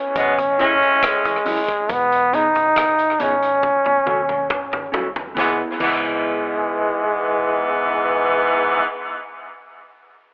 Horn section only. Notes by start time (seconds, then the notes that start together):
0.16 B2 G#3 B3
0.59 A2 G#3 C#4
5.37 G#2 E3 B3
5.81 G#2 E3 B3